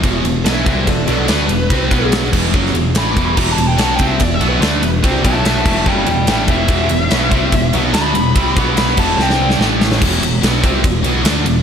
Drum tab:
CC |----------------|------x---------|x---------------|------x---------|
RD |x-x-x-x-x-x-x-x-|x-x-x-----x-x-x-|--x-x-x-x-x-x-x-|x-x-x-----x-x-x-|
SD |----o-------o---|----oo---o--o---|----o-------o---|----oo------o---|
BD |o-----o-o-------|o-o---o-o-----o-|o-----o-o-------|o-o---o-o-----o-|

CC |----------------|------x---------|x---------------|
RD |x-x-x-x-x-x-x-x-|x-x-x-----------|--x-x-x-x-x-x-x-|
SD |----o-------o---|----oo--oo-oo-oo|----oo------o---|
BD |o-----o-o-------|o-o---o---------|o-----o-o-------|